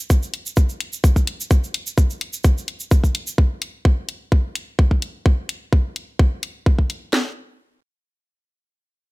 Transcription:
0.10 kick, cabasa
0.23 cabasa
0.34 closed hi-hat
0.46 cabasa
0.56 kick, cabasa
0.69 cabasa
0.80 closed hi-hat
0.93 cabasa
1.04 kick, cabasa
1.16 kick, cabasa
1.27 closed hi-hat
1.41 cabasa
1.51 kick, cabasa
1.64 cabasa
1.74 closed hi-hat
1.87 cabasa
1.98 kick, cabasa
2.10 cabasa
2.21 closed hi-hat
2.33 cabasa
2.44 kick, cabasa
2.58 cabasa
2.68 closed hi-hat
2.80 cabasa
2.91 kick, cabasa
3.04 kick, cabasa
3.15 closed hi-hat
3.27 cabasa
3.38 kick
3.62 closed hi-hat
3.85 kick
4.09 closed hi-hat
4.32 kick
4.55 closed hi-hat
4.79 kick
4.91 kick
5.02 closed hi-hat
5.26 kick
5.49 closed hi-hat
5.73 kick
5.96 closed hi-hat
6.19 kick
6.43 closed hi-hat
6.66 kick
6.79 kick
6.90 closed hi-hat
7.13 snare

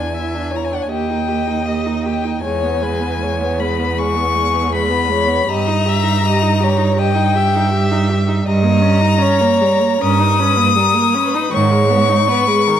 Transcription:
Already playing: E2 D4 D5 G#5
0.14 E4 E5
0.34 D4
0.51 E4 C#5
0.56 A#5
0.65 G#5
0.71 D4 F#5
0.82 G#5
0.89 D#2 G4 D#5 G5
1.10 D#4
1.28 G4
1.47 D#4
1.66 G4 D#5
1.86 D#4
2.03 G4 G5
2.24 D#4
2.41 E2 G#3 C#5 G#5
2.63 B3
2.81 G#3 B4
3.00 B3
3.19 G#3 C#5
3.40 B3
3.59 G#3 B4 B5
3.79 B3
3.97 G#3 G#4 C#6
4.16 B3
4.34 G#3
4.54 B3
4.72 G#3 B4 B5
4.90 B3
5.09 G#3 C#5
5.27 B3
5.47 G2 G4 D#5 A#5
5.67 D#4
5.85 G4 E5
6.03 D#4
6.23 G4 D#5
6.42 D#4
6.60 G4
6.64 C#5
6.78 D#4
6.96 G4 D#5 G5
7.15 D#4
7.35 G4 E5
7.55 D#4
7.73 G4
7.91 D#4
8.09 G4
8.28 D#4
8.44 G2 G3 D#5 A#5
8.63 A#3
8.81 C#4
9.01 D#4
9.18 C#4
9.22 C#5
9.41 A#3
9.62 G3
9.80 A#3
10.01 G2 C#4 A#4 D#6
10.19 D#4
10.40 C#4 B4
10.57 A#3
10.76 G3 A#4
10.95 A#3
11.14 C#4 B4
11.34 D#4
11.52 G#2 D#3 C#5 C#6
11.71 G#3
11.90 B3
12.09 D#4
12.28 B3 B4
12.48 G#3
12.68 D#3 A#4

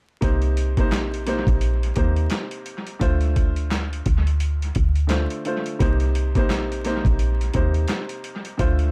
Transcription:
0.21 C2 C3 A#3 D#4 C5, kick, closed hi-hat
0.42 closed hi-hat
0.57 closed hi-hat
0.77 A#1 C3 A#3 D#4 C5, kick, closed hi-hat
0.92 snare, clap, closed hi-hat
1.14 closed hi-hat
1.26 C3 A#3 D#4 C5, snare, closed hi-hat
1.47 A#1, kick, closed hi-hat
1.61 closed hi-hat
1.83 closed hi-hat
1.95 D#2 C3 A#3 D#4 C5, kick, closed hi-hat
2.16 closed hi-hat
2.30 snare, clap, closed hi-hat
2.51 closed hi-hat
2.66 closed hi-hat
2.87 closed hi-hat
2.99 D2 D3 A3 F4 C5, kick, closed hi-hat
3.21 closed hi-hat
3.36 kick, closed hi-hat
3.56 closed hi-hat
3.71 snare, clap, closed hi-hat
3.93 closed hi-hat
4.06 D2, kick, closed hi-hat
4.27 closed hi-hat
4.40 closed hi-hat
4.62 closed hi-hat
4.75 D2, kick, closed hi-hat
4.95 closed hi-hat
5.07 D3 A3 F4 C5, snare, clap, closed hi-hat
5.30 closed hi-hat
5.45 D3 A3 F4 C5, closed hi-hat
5.66 closed hi-hat
5.79 C2 C3 A#3 D#4 C5, kick, closed hi-hat
6.00 closed hi-hat
6.15 closed hi-hat
6.35 A#1 C3 A#3 D#4 C5, kick, closed hi-hat
6.50 snare, clap, closed hi-hat
6.72 closed hi-hat
6.84 C3 A#3 D#4 C5, snare, closed hi-hat
7.05 A#1, kick, closed hi-hat
7.19 closed hi-hat
7.41 closed hi-hat
7.54 D#2 C3 A#3 D#4 C5, kick, closed hi-hat
7.74 closed hi-hat
7.88 snare, clap, closed hi-hat
8.09 closed hi-hat
8.24 closed hi-hat
8.45 closed hi-hat
8.57 D2 D3 A3 F4 C5, kick, closed hi-hat
8.79 closed hi-hat

